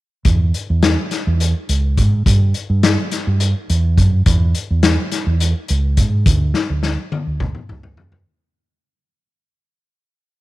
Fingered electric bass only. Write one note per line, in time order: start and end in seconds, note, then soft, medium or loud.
0.25 0.51 E2 medium
0.70 0.95 E2 medium
1.27 1.52 E2 medium
1.69 1.99 C#2 medium
1.97 2.23 G#2 medium
2.26 2.52 G2 medium
2.70 2.95 G2 medium
3.27 3.53 G2 medium
3.70 3.98 E2 medium
3.98 4.24 F#2 medium
4.26 4.52 E2 medium
4.70 4.96 E2 medium
5.26 5.52 E2 medium
5.70 5.99 C#2 medium
5.98 6.24 G#2 medium
6.26 6.52 D2 medium
6.70 6.96 D2 medium
7.27 7.53 D2 medium
7.71 7.99 C#2 medium
7.99 8.25 F#2 medium